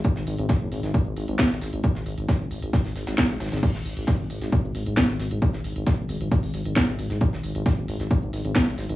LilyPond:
<<
  \new Staff \with { instrumentName = "Detuned saw bass" } { \clef bass \time 4/4 \tempo 4 = 134 r16 gis,,16 gis,,16 gis,,16 r16 fis,,16 gis,,16 gis,,16 r16 gis,,16 gis,,16 gis,,16 r16 gis,,16 gis,,16 gis,,16 | r16 gis,,16 gis,,16 gis,,16 r16 fis,,16 gis,,16 gis,,16 r16 gis,,16 gis,,16 gis,,16 r16 gis,,16 gis,,16 gis,,16 | r16 gis,,16 gis,,16 gis,,16 r16 fis,,16 gis,,16 gis,,16 r16 gis,,16 gis,,16 gis,,16 r16 gis,,16 gis,,16 gis,,16 | r16 gis,,16 gis,,16 gis,,16 r16 fis,,16 gis,,16 gis,,16 r16 gis,,16 gis,,16 gis,,16 r16 gis,,16 gis,,16 gis,,16 |
r16 gis,,16 gis,,16 gis,,16 r16 fis,,16 gis,,16 gis,,16 r16 gis,,16 gis,,16 gis,,16 r16 gis,,16 gis,,16 gis,,16 | }
  \new DrumStaff \with { instrumentName = "Drums" } \drummode { \time 4/4 <hh bd>16 sn16 <hh hho>16 hh16 <hh bd sn>16 hh16 <hh hho>16 <hh sn>16 <hh bd>16 hh16 <hh hho>16 hh16 <hh bd sn>16 sn16 <hh hho sn>16 hh16 | <hh bd>16 sn16 <hh hho>16 hh16 <hh bd sn>8 <hh hho>16 hh16 <hh bd sn>16 <hho sn>16 <hh hho sn>16 <hh sn>16 <hh bd sn>16 <hh sn>16 <hh hho sn>32 <hh sn>32 <hh sn>32 <hh sn>32 | <cymc hh bd>16 sn16 <hh hho>16 hh16 <hh bd sn>16 hh16 <hh hho>16 <hh sn>16 <hh bd>16 hh16 <hh hho>16 hh16 <hh bd sn>16 sn16 <hh hho sn>16 hh16 | <hh bd>16 sn16 <hh hho>16 hh16 <hh bd sn>8 <hh hho>16 hh16 <hh bd>16 hho16 <hh hho>16 hh16 <hh bd sn>16 hh16 <hh hho>16 <hh sn>16 |
<hh bd>16 sn16 <hh hho>16 hh16 <hh bd sn>16 hh16 <hh hho>16 <hh sn>16 <hh bd>16 hh16 <hh hho>16 hh16 <hh bd sn>16 sn16 <hh hho sn>16 hh16 | }
>>